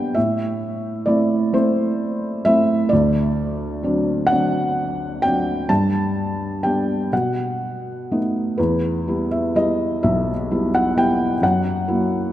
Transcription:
0.00 0.12 G2 medium
0.00 0.18 G3 soft
0.00 0.18 B3 soft
0.00 0.18 D4 soft
0.00 0.18 F#5 medium
0.00 0.17 G5 medium
0.15 2.87 A2 medium
0.15 1.03 E5 medium
1.06 1.52 A3 soft
1.06 1.52 C4 soft
1.06 1.53 E4 soft
1.06 1.54 D5 medium
1.53 2.43 A3 soft
1.53 2.43 C4 soft
1.53 2.43 E4 soft
1.53 2.48 C5 medium
2.45 2.90 A3 medium
2.45 2.90 C4 soft
2.45 2.90 E4 medium
2.45 2.88 E5 loud
2.89 5.65 D2 medium
2.89 4.32 D5 medium
3.83 4.30 F#3 soft
3.83 4.29 C4 soft
3.83 4.30 D4 medium
4.27 5.24 F#5 medium
4.31 5.21 F#3 soft
4.31 5.20 C4 soft
4.31 5.21 D4 medium
5.22 5.68 F#3 soft
5.22 5.68 C4 soft
5.22 5.69 D4 soft
5.22 5.70 G5 medium
5.69 7.09 G2 medium
5.69 6.60 A5 medium
6.63 7.11 G3 soft
6.63 7.11 B3 soft
6.63 7.12 D4 soft
6.63 7.13 G5 medium
7.13 8.54 B2 medium
7.13 8.18 F#5 medium
8.11 8.58 A3 soft
8.11 8.58 B3 soft
8.11 8.58 D#4 soft
8.58 11.39 E2 medium
8.58 9.26 B4 medium
9.07 9.53 G3 soft
9.07 9.54 B3 soft
9.07 9.54 E4 soft
9.31 9.53 E5 medium
9.55 10.31 G3 soft
9.55 10.31 B3 soft
9.55 10.31 E4 soft
9.55 10.00 D#5 medium
10.03 11.39 B1 medium
10.03 10.69 E5 medium
10.51 10.95 G3 soft
10.51 10.96 B3 soft
10.51 10.96 E4 soft
10.75 10.98 F#5 medium
10.97 11.34 G3 soft
10.97 11.34 B3 soft
10.97 11.34 E4 soft
10.97 11.45 G5 medium
11.41 12.32 F#2 medium
11.41 12.32 F#5 medium
11.88 12.31 F#3 soft
11.88 12.31 A#3 soft
11.88 12.32 E4 soft

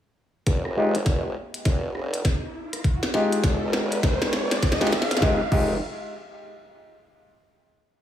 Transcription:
0.47 1.34 F1 medium
0.47 kick medium
0.47 snare soft
0.47 closed hi-hat medium
0.47 riser medium
0.65 cross-stick medium
0.76 0.95 G#3 medium
0.76 0.95 D#4 medium
0.76 0.95 F4 medium
0.76 0.95 G4 medium
0.95 closed hi-hat medium
1.06 kick medium
1.06 snare medium
1.06 closed hi-hat medium
1.54 closed hi-hat medium
1.65 2.23 F1 loud
1.65 kick loud
1.65 snare medium
1.65 closed hi-hat medium
1.95 cross-stick soft
2.14 closed hi-hat medium
2.25 kick loud
2.25 snare medium
2.25 closed hi-hat medium
2.73 cross-stick soft
2.73 closed hi-hat medium
2.84 kick loud
2.84 closed hi-hat medium
3.03 snare medium
3.14 4.77 G#3 medium
3.14 4.77 D#4 medium
3.14 4.77 F4 medium
3.14 4.77 G4 medium
3.14 snare medium
3.33 closed hi-hat medium
3.44 3.59 F1 loud
3.44 kick loud
3.44 snare medium
3.44 closed hi-hat medium
3.62 4.19 F1 medium
3.73 snare medium
3.92 closed hi-hat medium
4.03 kick loud
4.03 snare medium
4.03 closed hi-hat medium
4.22 4.61 F1 medium
4.22 snare medium
4.33 snare loud
4.51 snare medium
4.51 closed hi-hat medium
4.63 5.20 G#1 medium
4.63 kick loud
4.63 snare loud
4.63 closed hi-hat medium
4.72 snare medium
4.81 4.93 G#3 medium
4.81 4.93 D#4 medium
4.81 4.93 F4 medium
4.81 4.93 G4 loud
4.81 snare medium
4.87 snare medium
4.93 snare loud
5.02 snare medium
5.11 snare loud
5.11 closed hi-hat medium
5.17 snare loud
5.22 5.41 F1 medium
5.22 5.41 G#3 medium
5.22 5.41 D#4 medium
5.22 5.41 F4 medium
5.22 5.41 G4 loud
5.22 kick loud
5.22 snare medium
5.52 5.79 F1 loud
5.52 5.75 G#3 medium
5.52 5.75 D#4 medium
5.52 5.75 F4 medium
5.52 5.75 G4 loud
5.52 kick loud
5.52 crash medium

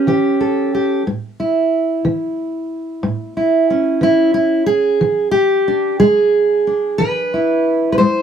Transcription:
0.00 1.02 C#4 medium
0.00 0.40 B4 medium
0.07 0.66 E3 medium
0.07 0.73 G4 medium
0.41 1.02 A4 medium
0.75 1.02 G4 medium
1.07 1.65 A2 medium
1.40 3.36 E4 soft
2.05 2.64 E3 medium
3.03 3.63 A2 medium
3.37 4.03 E4 soft
3.70 4.98 C#4 soft
4.01 4.61 E3 medium
4.01 4.33 E4 medium
4.34 4.66 E4 medium
4.66 5.31 G#4 medium
5.01 5.61 E3 medium
5.31 5.99 G4 medium
5.68 6.67 D4 soft
6.00 6.60 G#3 medium
6.00 7.32 G#4 medium
6.67 8.22 D4 soft
6.98 7.60 E3 medium
6.98 7.91 B4 medium
7.34 8.22 E4 soft
7.92 7.97 B4 medium
7.98 8.22 G#3 medium
7.98 8.22 C5 medium

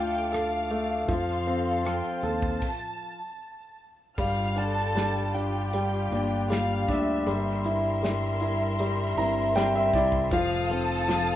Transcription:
0.00 1.05 D2 medium
0.00 1.05 D3 medium
0.00 1.09 D3 medium
0.00 0.71 A3 soft
0.00 1.16 D4 soft
0.00 1.11 F4 medium
0.00 1.85 F4 medium
0.00 0.31 A4 soft
0.00 1.05 A4 medium
0.00 1.85 A4 medium
0.00 2.58 F5 medium
0.00 0.33 G5 medium
0.00 1.05 D6 medium
0.32 1.06 A4 medium
0.32 1.06 F5 medium
0.32 cross-stick loud
0.32 closed hi-hat medium
0.71 1.08 A3 medium
0.71 closed hi-hat medium
1.08 2.00 F2 loud
1.08 2.58 F3 medium
1.08 3.20 F3 medium
1.08 2.61 A4 medium
1.08 1.82 F5 medium
1.08 2.60 C6 medium
1.08 kick medium
1.08 closed hi-hat medium
1.47 2.59 C4 medium
1.47 closed hi-hat medium
1.85 2.70 C4 medium
1.85 2.60 F4 medium
1.85 2.22 F4 medium
1.85 2.70 A4 medium
1.85 2.24 G5 medium
1.85 cross-stick medium
1.85 closed hi-hat medium
2.23 2.59 D#2 medium
2.23 3.19 F4 medium
2.23 2.61 A4 medium
2.23 3.80 A5 medium
2.23 closed hi-hat medium
2.42 kick medium
2.62 kick medium
2.62 crash medium
4.17 6.08 G1 medium
4.17 7.25 G2 medium
4.17 4.94 G3 medium
4.17 7.24 F4 medium
4.17 7.23 G4 medium
4.17 4.54 F5 medium
4.17 7.24 G5 medium
4.17 4.55 F6 medium
4.17 kick medium
4.17 crash medium
4.56 6.11 D4 medium
4.56 5.33 D4 soft
4.56 5.35 A4 medium
4.56 5.34 A5 loud
4.56 closed hi-hat medium
4.95 5.72 G3 medium
4.95 snare medium
4.95 closed hi-hat medium
5.35 6.11 D4 soft
5.35 6.47 G4 medium
5.35 6.46 G5 medium
5.35 closed hi-hat medium
5.73 6.49 G3 soft
5.73 closed hi-hat medium
6.11 6.84 G1 medium
6.11 7.68 A#3 medium
6.11 7.34 D4 medium
6.11 6.87 D4 medium
6.11 7.68 A#4 medium
6.11 closed hi-hat medium
6.50 7.24 G3 medium
6.50 6.89 F5 medium
6.50 6.89 F6 medium
6.50 snare loud
6.50 closed hi-hat medium
6.88 7.24 D2 medium
6.88 7.26 D4 medium
6.88 7.66 E5 medium
6.88 7.66 E6 medium
6.88 kick medium
6.88 snare soft
6.88 closed hi-hat medium
7.26 9.13 G1 medium
7.26 10.32 G2 medium
7.26 8.01 G3 medium
7.26 10.29 A#4 medium
7.26 10.29 E5 medium
7.26 10.29 C6 medium
7.26 closed hi-hat medium
7.64 9.16 E4 medium
7.64 8.40 E4 medium
7.64 closed hi-hat medium
8.03 8.78 G3 medium
8.03 9.17 A#4 medium
8.03 snare loud
8.03 closed hi-hat medium
8.40 9.16 E4 medium
8.40 closed hi-hat medium
8.79 9.54 G3 medium
8.79 closed hi-hat medium
9.17 9.89 G1 loud
9.17 11.36 C4 medium
9.17 9.94 E4 medium
9.17 10.39 E4 medium
9.17 10.40 A#4 medium
9.17 9.53 A#5 medium
9.17 closed hi-hat medium
9.55 10.30 G3 medium
9.55 9.73 G5 medium
9.55 snare loud
9.55 closed hi-hat medium
9.76 9.93 E5 medium
9.93 10.29 C2 medium
9.93 10.31 E4 medium
9.93 10.30 D5 medium
9.93 kick medium
9.93 snare soft
9.93 closed hi-hat medium
10.12 kick medium
10.31 11.36 F1 loud
10.31 11.36 F3 medium
10.31 11.07 F3 medium
10.31 11.36 A4 medium
10.31 10.67 F5 loud
10.31 11.36 F5 medium
10.31 11.36 D#6 medium
10.31 10.67 F6 medium
10.31 kick loud
10.31 closed hi-hat medium
10.69 11.36 C4 medium
10.69 11.36 D#4 medium
10.69 11.36 A4 loud
10.69 11.36 A5 loud
10.69 closed hi-hat medium
11.08 11.36 F3 medium
11.08 11.36 A4 medium
11.08 snare medium
11.08 closed hi-hat medium

